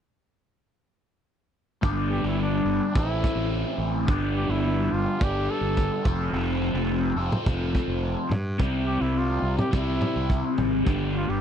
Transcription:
1.82 fingered electric bass G1, overdriven electric guitar G2 D3 G3 B3 D4 G4, kick
2.11 trumpet G4
2.24 fingered electric bass G1, trumpet E4
2.42 trumpet D4
2.65 fingered electric bass G1
2.93 fingered electric bass A1, overdriven electric guitar A2 E3 C4 E4, trumpet E4, kick
2.97 overdriven electric guitar A4
3.24 kick
3.35 fingered electric bass A1
3.78 fingered electric bass A1
4.05 fingered electric bass G1, overdriven electric guitar G2 D3 G3 B3 D4, kick
4.10 overdriven electric guitar G4
4.35 trumpet G4
4.49 fingered electric bass G1, trumpet E4
4.92 fingered electric bass G1, trumpet F4
5.19 fingered electric bass G1, overdriven electric guitar G2 D3 G3 B3 D4, kick
5.23 overdriven electric guitar G4, trumpet G4
5.50 trumpet A4
5.61 fingered electric bass G1
5.77 kick
6.04 fingered electric bass F1, overdriven electric guitar F3 C4 F4 A4, kick
6.33 fingered electric bass F1
6.74 fingered electric bass F1
7.16 fingered electric bass F1, overdriven electric guitar C4 F4 A4
7.20 overdriven electric guitar F3
7.32 mid tom
7.46 fingered electric bass F1, kick, mid tom
7.75 kick
7.88 fingered electric bass F1
8.30 fingered electric bass G2, mid tom
8.58 fingered electric bass C2, overdriven electric guitar C3 G3 C4 E4 G4, kick
8.86 trumpet G4
9.01 fingered electric bass C2, trumpet E4
9.18 trumpet F4
9.42 fingered electric bass C2
9.58 trumpet G4, mid tom
9.71 fingered electric bass C2, overdriven electric guitar C3 G3 C4 E4, kick
9.76 trumpet E4, overdriven electric guitar G4
10.02 mid tom
10.16 fingered electric bass C2
10.30 kick
10.58 fingered electric bass G#1, mid tom
10.84 fingered electric bass G1, overdriven electric guitar G2 D3 G3 B3 D4, kick
10.89 overdriven electric guitar G4
11.16 trumpet F4
11.29 fingered electric bass G1, trumpet G4

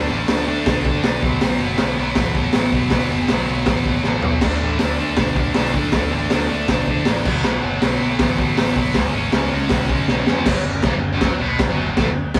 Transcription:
0.08 picked electric bass A1, distorted electric guitar D3 A3 D4
0.27 picked electric bass D2, distorted electric guitar D3 A3 D4, snare, open hi-hat
0.46 picked electric bass D2, distorted electric guitar D3 A3 D4
0.65 picked electric bass B1, distorted electric guitar D3 A3 D4, kick, snare, open hi-hat
0.84 distorted electric guitar D3 A3 D4, kick
1.03 picked electric bass B1, distorted electric guitar D3 A3 D4, snare, open hi-hat
1.21 picked electric bass B1, distorted electric guitar B2 F#3 B3, kick
1.40 picked electric bass B1, distorted electric guitar B2 F#3 B3, snare, open hi-hat
1.60 picked electric bass F#1, distorted electric guitar B2 F#3 B3
1.78 picked electric bass B1, distorted electric guitar B2 F#3 B3, snare, open hi-hat
1.98 picked electric bass B1, distorted electric guitar B2 F#3 B3
2.15 picked electric bass A1, distorted electric guitar B2 F#3 B3, kick, snare, open hi-hat
2.35 distorted electric guitar B2 F#3 B3, kick
2.53 picked electric bass A1, distorted electric guitar B2 F#3 B3, snare, open hi-hat
2.73 picked electric bass B1, distorted electric guitar B2 F#3 B3, kick
2.90 picked electric bass B1, distorted electric guitar B2 F#3 B3, kick, snare, open hi-hat
3.10 picked electric bass F#1, distorted electric guitar B2 F#3 B3
3.28 picked electric bass B1, distorted electric guitar B2 F#3 B3, snare, open hi-hat
3.48 picked electric bass B1, distorted electric guitar B2 F#3 B3
3.66 picked electric bass A1, distorted electric guitar B2 F#3 B3, kick, snare, open hi-hat
3.85 distorted electric guitar B2 F#3 B3, kick
4.03 picked electric bass A1, distorted electric guitar B2 F#3 B3, snare
4.22 picked electric bass B1, distorted electric guitar B2 F#3 B3, floor tom
4.40 picked electric bass D2, distorted electric guitar D3 A3 D4, kick, snare, crash
4.59 picked electric bass A1, distorted electric guitar D3 A3 D4
4.79 picked electric bass D2, distorted electric guitar D3 A3 D4, snare, open hi-hat
4.97 picked electric bass D2, distorted electric guitar D3 A3 D4
5.16 picked electric bass B1, distorted electric guitar D3 A3 D4, kick, snare, open hi-hat
5.35 distorted electric guitar D3 A3 D4, kick
5.54 picked electric bass B1, distorted electric guitar D3 A3 D4, snare, open hi-hat
5.73 picked electric bass D2, distorted electric guitar D3 A3 D4, kick
5.92 picked electric bass D2, distorted electric guitar D3 A3 D4, kick, snare, open hi-hat
6.11 picked electric bass A1, distorted electric guitar D3 A3 D4
6.30 picked electric bass D2, distorted electric guitar D3 A3 D4, snare, open hi-hat
6.49 picked electric bass D2, distorted electric guitar D3 A3 D4
6.68 picked electric bass B1, distorted electric guitar D3 A3 D4, kick, snare, open hi-hat
6.88 distorted electric guitar D3 A3 D4, kick
7.05 picked electric bass A1, distorted electric guitar D3 A3 D4, snare, open hi-hat
7.25 picked electric bass B1, distorted electric guitar B2 F#3 B3, kick, crash
7.44 picked electric bass B1, distorted electric guitar B2 F#3 B3, snare
7.64 picked electric bass F#1, distorted electric guitar B2 F#3 B3
7.81 picked electric bass B1, distorted electric guitar B2 F#3 B3, snare, open hi-hat
8.00 picked electric bass B1, distorted electric guitar B2 F#3 B3
8.19 picked electric bass A1, distorted electric guitar B2 F#3 B3, kick, snare, open hi-hat
8.38 distorted electric guitar B2 F#3 B3, kick
8.56 picked electric bass A1, distorted electric guitar B2 F#3 B3, snare, open hi-hat
8.74 picked electric bass B1, distorted electric guitar B2 F#3 B3, kick
8.94 picked electric bass C#2, distorted electric guitar C#3 G#3 C#4, kick, snare, open hi-hat
9.13 picked electric bass G#1, distorted electric guitar C#3 G#3 C#4
9.31 picked electric bass C#2, distorted electric guitar C#3 G#3 C#4, snare, open hi-hat
9.50 picked electric bass C#2, distorted electric guitar C#3 G#3 C#4
9.69 picked electric bass B1, distorted electric guitar C#3 G#3 C#4, kick, snare, open hi-hat
9.89 distorted electric guitar C#3 G#3 C#4, kick
10.07 picked electric bass B1, distorted electric guitar C#3 G#3 C#4, snare
10.26 picked electric bass F2, distorted electric guitar C#3 G#3 C#4, snare
10.46 picked electric bass F#1, distorted electric guitar F#2 F#3, kick, snare, crash
10.55 muted distorted electric guitar stroke, muted picked electric bass stroke
10.65 picked electric bass F#1, distorted electric guitar F#2
10.83 picked electric bass E1, distorted electric guitar E2 E3, kick, snare, crash
10.94 picked electric bass F#1, distorted electric guitar F#2
11.13 picked electric bass F#1, distorted electric guitar F#2 F#3
11.21 kick, snare, crash
11.32 muted distorted electric guitar stroke, muted picked electric bass stroke
11.40 picked electric bass B1, distorted electric guitar B2 B3
11.59 muted picked electric bass stroke, muted distorted electric guitar stroke, kick, snare, crash
11.69 picked electric bass F#1, distorted electric guitar F#2 F#3
11.88 picked electric bass F#1, distorted electric guitar F#2
11.97 picked electric bass A1, distorted electric guitar A2 A3, kick, snare, crash
12.06 picked electric bass F#1, distorted electric guitar F#2
12.34 kick, snare, crash

